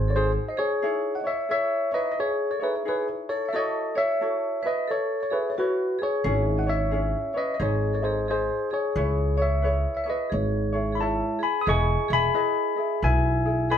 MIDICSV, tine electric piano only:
0, 0, Header, 1, 2, 480
1, 0, Start_track
1, 0, Key_signature, 4, "minor"
1, 0, Tempo, 677966
1, 588, Time_signature, 4, 2, 24, 8
1, 9755, End_track
2, 0, Start_track
2, 0, Title_t, "Tine electric piano"
2, 0, Program_c, 0, 4
2, 0, Note_on_c, 0, 68, 61
2, 0, Note_on_c, 0, 72, 84
2, 73, Note_on_c, 0, 73, 69
2, 104, Note_off_c, 0, 72, 0
2, 110, Note_off_c, 0, 68, 0
2, 110, Note_off_c, 0, 73, 0
2, 113, Note_on_c, 0, 72, 84
2, 119, Note_on_c, 0, 68, 69
2, 219, Note_off_c, 0, 72, 0
2, 224, Note_off_c, 0, 68, 0
2, 344, Note_on_c, 0, 75, 67
2, 407, Note_off_c, 0, 75, 0
2, 415, Note_on_c, 0, 73, 94
2, 421, Note_on_c, 0, 68, 75
2, 804, Note_off_c, 0, 68, 0
2, 816, Note_on_c, 0, 78, 64
2, 842, Note_off_c, 0, 73, 0
2, 883, Note_off_c, 0, 78, 0
2, 898, Note_on_c, 0, 76, 91
2, 903, Note_on_c, 0, 73, 66
2, 1062, Note_off_c, 0, 73, 0
2, 1063, Note_off_c, 0, 76, 0
2, 1070, Note_on_c, 0, 73, 75
2, 1072, Note_on_c, 0, 76, 93
2, 1348, Note_off_c, 0, 73, 0
2, 1349, Note_off_c, 0, 76, 0
2, 1376, Note_on_c, 0, 75, 88
2, 1377, Note_on_c, 0, 71, 72
2, 1490, Note_off_c, 0, 75, 0
2, 1499, Note_on_c, 0, 75, 64
2, 1505, Note_off_c, 0, 71, 0
2, 1541, Note_off_c, 0, 75, 0
2, 1556, Note_on_c, 0, 68, 69
2, 1558, Note_on_c, 0, 73, 90
2, 1768, Note_off_c, 0, 73, 0
2, 1773, Note_off_c, 0, 68, 0
2, 1777, Note_on_c, 0, 73, 61
2, 1842, Note_off_c, 0, 73, 0
2, 1864, Note_on_c, 0, 68, 63
2, 1866, Note_on_c, 0, 71, 78
2, 1941, Note_off_c, 0, 68, 0
2, 1943, Note_off_c, 0, 71, 0
2, 2044, Note_on_c, 0, 68, 68
2, 2045, Note_on_c, 0, 71, 84
2, 2175, Note_off_c, 0, 68, 0
2, 2175, Note_off_c, 0, 71, 0
2, 2331, Note_on_c, 0, 73, 82
2, 2333, Note_on_c, 0, 69, 66
2, 2462, Note_off_c, 0, 69, 0
2, 2468, Note_on_c, 0, 76, 72
2, 2475, Note_off_c, 0, 73, 0
2, 2505, Note_off_c, 0, 76, 0
2, 2517, Note_on_c, 0, 69, 73
2, 2519, Note_on_c, 0, 75, 97
2, 2791, Note_off_c, 0, 69, 0
2, 2810, Note_on_c, 0, 73, 68
2, 2816, Note_on_c, 0, 76, 89
2, 2821, Note_off_c, 0, 75, 0
2, 3259, Note_off_c, 0, 73, 0
2, 3298, Note_on_c, 0, 71, 68
2, 3305, Note_off_c, 0, 76, 0
2, 3305, Note_on_c, 0, 75, 90
2, 3459, Note_off_c, 0, 71, 0
2, 3474, Note_on_c, 0, 69, 65
2, 3479, Note_on_c, 0, 73, 86
2, 3480, Note_off_c, 0, 75, 0
2, 3691, Note_off_c, 0, 69, 0
2, 3694, Note_off_c, 0, 73, 0
2, 3702, Note_on_c, 0, 73, 60
2, 3764, Note_off_c, 0, 73, 0
2, 3765, Note_on_c, 0, 68, 63
2, 3772, Note_on_c, 0, 71, 78
2, 3894, Note_on_c, 0, 73, 61
2, 3898, Note_off_c, 0, 68, 0
2, 3916, Note_off_c, 0, 71, 0
2, 3937, Note_off_c, 0, 73, 0
2, 3953, Note_on_c, 0, 66, 62
2, 3962, Note_on_c, 0, 71, 77
2, 4228, Note_off_c, 0, 66, 0
2, 4261, Note_on_c, 0, 68, 69
2, 4262, Note_off_c, 0, 71, 0
2, 4271, Note_on_c, 0, 73, 95
2, 4643, Note_off_c, 0, 68, 0
2, 4665, Note_on_c, 0, 78, 68
2, 4688, Note_off_c, 0, 73, 0
2, 4726, Note_off_c, 0, 78, 0
2, 4739, Note_on_c, 0, 73, 74
2, 4740, Note_on_c, 0, 76, 91
2, 5184, Note_off_c, 0, 73, 0
2, 5215, Note_on_c, 0, 71, 64
2, 5221, Note_on_c, 0, 75, 88
2, 5226, Note_off_c, 0, 76, 0
2, 5333, Note_off_c, 0, 75, 0
2, 5342, Note_on_c, 0, 75, 61
2, 5343, Note_off_c, 0, 71, 0
2, 5381, Note_off_c, 0, 75, 0
2, 5398, Note_on_c, 0, 68, 63
2, 5399, Note_on_c, 0, 73, 80
2, 5613, Note_off_c, 0, 68, 0
2, 5618, Note_off_c, 0, 73, 0
2, 5626, Note_on_c, 0, 73, 56
2, 5686, Note_off_c, 0, 73, 0
2, 5687, Note_on_c, 0, 68, 60
2, 5692, Note_on_c, 0, 72, 77
2, 5853, Note_off_c, 0, 68, 0
2, 5873, Note_off_c, 0, 72, 0
2, 5882, Note_on_c, 0, 68, 65
2, 5883, Note_on_c, 0, 72, 79
2, 6153, Note_off_c, 0, 68, 0
2, 6154, Note_off_c, 0, 72, 0
2, 6180, Note_on_c, 0, 68, 67
2, 6185, Note_on_c, 0, 73, 85
2, 6624, Note_off_c, 0, 68, 0
2, 6627, Note_off_c, 0, 73, 0
2, 6669, Note_on_c, 0, 76, 85
2, 6670, Note_on_c, 0, 73, 66
2, 7048, Note_off_c, 0, 73, 0
2, 7049, Note_off_c, 0, 76, 0
2, 7057, Note_on_c, 0, 76, 64
2, 7122, Note_off_c, 0, 76, 0
2, 7149, Note_on_c, 0, 71, 62
2, 7149, Note_on_c, 0, 75, 82
2, 7305, Note_off_c, 0, 71, 0
2, 7320, Note_on_c, 0, 56, 53
2, 7320, Note_on_c, 0, 73, 70
2, 7322, Note_off_c, 0, 75, 0
2, 7755, Note_on_c, 0, 83, 62
2, 7788, Note_off_c, 0, 83, 0
2, 7792, Note_on_c, 0, 81, 85
2, 7806, Note_on_c, 0, 76, 70
2, 8064, Note_off_c, 0, 73, 0
2, 8065, Note_off_c, 0, 56, 0
2, 8068, Note_off_c, 0, 81, 0
2, 8075, Note_off_c, 0, 76, 0
2, 8092, Note_on_c, 0, 83, 86
2, 8096, Note_on_c, 0, 80, 67
2, 8223, Note_on_c, 0, 87, 68
2, 8224, Note_off_c, 0, 80, 0
2, 8236, Note_off_c, 0, 83, 0
2, 8262, Note_off_c, 0, 87, 0
2, 8277, Note_on_c, 0, 85, 95
2, 8285, Note_on_c, 0, 80, 77
2, 8555, Note_off_c, 0, 80, 0
2, 8580, Note_off_c, 0, 85, 0
2, 8589, Note_on_c, 0, 83, 95
2, 8596, Note_on_c, 0, 80, 73
2, 9212, Note_off_c, 0, 80, 0
2, 9233, Note_on_c, 0, 80, 93
2, 9240, Note_on_c, 0, 76, 73
2, 9256, Note_off_c, 0, 83, 0
2, 9685, Note_off_c, 0, 76, 0
2, 9701, Note_off_c, 0, 80, 0
2, 9710, Note_on_c, 0, 80, 76
2, 9711, Note_on_c, 0, 83, 96
2, 9755, Note_off_c, 0, 80, 0
2, 9755, Note_off_c, 0, 83, 0
2, 9755, End_track
0, 0, End_of_file